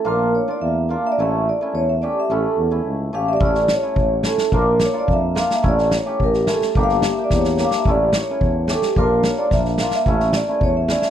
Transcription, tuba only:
\new Staff \with { instrumentName = "Tuba" } { \clef bass \time 2/4 \tempo 4 = 108 bes,,4 e,4 | a,,4 e,4 | a,,8 e,8 cis,8 a,,8 | a,,4 a,,4 |
bes,,4 f,4 | a,,4 a,,4 | g,,4 e,4 | a,,4 e,4 |
bes,,4 bes,,4 | a,,4 e,4 | }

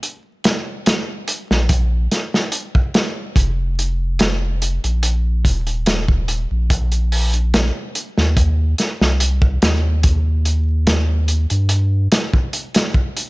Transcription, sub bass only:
\new Staff \with { instrumentName = "Sub bass" } { \clef bass \time 4/4 \key ees \major \tempo 4 = 72 r4. r16 bes,,8. r4. | f,,4.~ f,,16 bes,,8. ees,,4~ ees,,16 bes,,16~ | bes,,4~ bes,,16 r8 ees,8. r16 c,8. ees,8~ | ees,4.~ ees,16 g,8. r4. | }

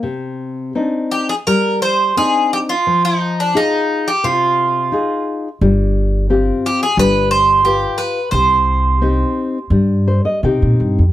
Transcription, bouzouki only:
\new Staff \with { instrumentName = "Bouzouki" } { \time 4/4 \key c \minor \tempo 4 = 87 r4. g'16 aes'16 bes'8 c''8 aes'8 g'16 f'16~ | f'16 ees'8 d'16 ees'8. g'16 f'4. r8 | r4. g'16 aes'16 b'8 c''8 g'8 b'8 | c''2. r4 | }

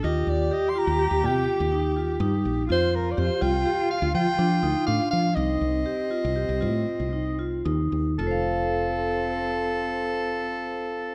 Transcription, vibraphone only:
\new Staff \with { instrumentName = "Vibraphone" } { \time 11/8 \key f \mixolydian \tempo 4 = 122 f'4 g'8 f'8 g'8 f'4 ees'8 f'8 ees'4 | f'4 g'8 f'8 g'8 f'4 d'8 ees'8 d'4 | ees'4 g'8 f'8 g'8 f'4 ees'8 f'8 ees'4 | <f' a' c'' f''>1~ <f' a' c'' f''>4. | }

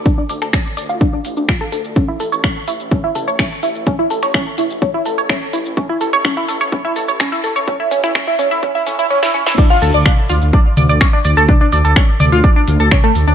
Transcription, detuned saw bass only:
\new Staff \with { instrumentName = "Detuned saw bass" } { \clef bass \time 4/4 \key d \minor \tempo 4 = 126 r8 d,16 d,16 r8 d,16 d,16 r8 a,,16 d,16 r8 d,16 d,16 | r8 a,,16 a,,16 r8 a,,16 a,,16 r8 a,,16 a,,16 r8 a,,16 a,,16 | r8 a,,16 a,,16 r8 a,,16 a,,16 r8 a,,16 a,,16 r8 a,,16 a,,16 | r8 a,,16 a,,16 r8 a,,16 a,,16 r8 a,,16 a,,16 r8 a,,16 a,,16 |
r8 a,,16 a,,16 r8 a,,16 a,,16 r8 a,16 g,,16 r4 | r8 d,16 d,16 r8 d,16 d,16 r8 d,16 d,16 r8 d,16 d,16 | r8 d,16 d,16 r8 d,16 d,16 r8 d,16 d,16 r8 d,16 d,16 | }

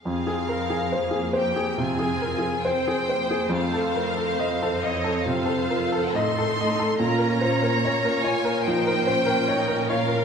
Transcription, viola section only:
\new Staff \with { instrumentName = "Viola section" } { \time 4/4 \key bes \dorian \tempo 4 = 71 << { aes'8 bes'8 aes'8 g'8 f'4 c''4~ | c''2 a'2 | f'4 des'2 ees'8 f'8 | } \\ { c'4 bes4 c'4 c'8 bes8 | a8 a8 c'4 f'4 ees'8 ees'8 | des'4 des'8 f'8 ees'8 des'4. | } >> }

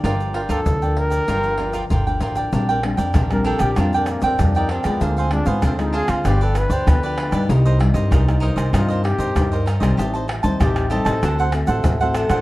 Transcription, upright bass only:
\new Staff \with { instrumentName = "Upright bass" } { \clef bass \time 4/4 \key g \minor \tempo 4 = 96 g,,8. d,16 d,4 g,,4 g,,8 a,,8 | \key bes \major bes,,8. f,16 bes,,8. bes,,16 f,8. f,16 f,8. f,16 | d,8. aes,16 d,8. d,16 g,,8. d,16 d,8. g,16 | c,8. g,16 c,8. c,16 g,8. g,16 g,8. c,16 |
a,,8. ees,16 a,,8. a,,16 d,8. a,,16 a,,8. a,,16 | }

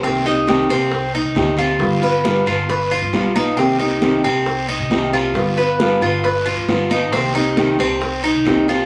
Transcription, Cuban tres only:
\new Staff \with { instrumentName = "Cuban tres" } { \time 4/4 \key c \minor \tempo 4 = 135 c'8 ees'4 c'4 ees'4 f'8~ | f'8 b'4 f'8 b'8 f'4 ees'8 | c'8 ees'4 c'4 ees'4 f'8~ | f'8 b'4 f'8 b'8 f'4 ees'8 |
c'8 ees'4 c'4 ees'4 f'8 | }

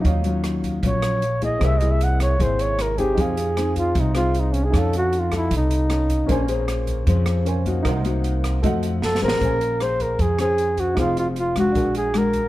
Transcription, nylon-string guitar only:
\new Staff \with { instrumentName = "Nylon-string guitar" } { \time 4/4 \key bes \minor \tempo 4 = 154 << { <fis cis' f'>8 <ges des' f'>4. <ges des' f'>4 r8 <bes e' aes'>8~ | <bes e' aes'>8 <bes e' gis'>4. <bes e' gis'>4. <c' dis' gis'>8~ | <c' dis' gis'>8 r8 <c' ees' aes'>4 r8 <c' ees' aes'>4. | <des' ees' a'>4. <ees' a'>4. <des' ees' a'>4 |
<des' aes' c''>8 <des' aes' c''>4. <des' aes' c''>4 r8 <bes ees' ges'>8~ | <bes ees' ges'>8 <bes ees' ges'>4. <a ees' ges'>4 r8 <des' aes' c''>8~ | <des' aes' c''>8 r8 <des' aes' c''>4 r8 <des' aes' c''>4. | <c' ees' aes'>4 r8 <aes d' ges'>4. <aes d' fis'>8 r8 | } \\ { ees2 bes,2 | c2 c2 | f2 c2 | f2 r2 |
bes2 f2 | c2 f2 | bes2 f2 | f2 bes,2 | } >> }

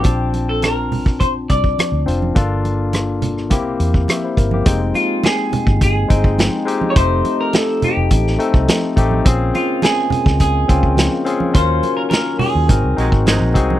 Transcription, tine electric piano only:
\new Staff \with { instrumentName = "Tine electric piano" } { \time 4/4 \key f \minor \tempo 4 = 105 << { r1 | r2. <g' e''>16 <e' c''>16 bes'16 <bes g'>16~ | <bes g'>16 r2. r8. | r1 |
r1 | r1 | } \\ { <c' d' f' a''>4. r2 <c' d' f' c''>8 | <bes d' f' a'>4. r8 <bes c' e' g'>4 r4 | <aes c' ees' g''>4. r4 <aes c' ees' g''>4 <aes c' ees' g'>8 | <a c' ees' g'>4. r4 <a c' ees' a'>4 <a c' ees' g'>8 |
<c' des' f' aes'>4. r4 <c' des' f' g''>4 <c' des' f' aes'>8 | <des' f' ges' bes'>4. r8 <c' ees' ges' bes'>8 <c' ees' ges' c''>4 <c' ees' ges' aes'>8 | } >> }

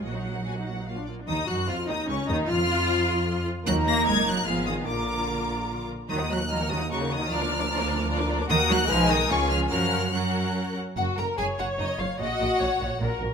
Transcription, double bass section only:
\new Staff \with { instrumentName = "Double bass section" } { \clef bass \time 3/4 \key ees \minor \tempo 4 = 149 bes,,2~ bes,,8 r8 | ees,8 ges,8 f,8 ees,8 des,8 ees,8 | f,2~ f,8 r8 | ees,4 ges,,4 aes,,4 |
bes,,2~ bes,,8 r8 | ees,2. | d,2. | \key fis \major dis,4 b,,4 cis,4 |
fis,2~ fis,8 r8 | fis,,8 fis,,8 fis,,8 fis,,8 fis,,8 fis,,8 | ais,,8 ais,,8 ais,,8 ais,,8 ais,,8 ais,,8 | }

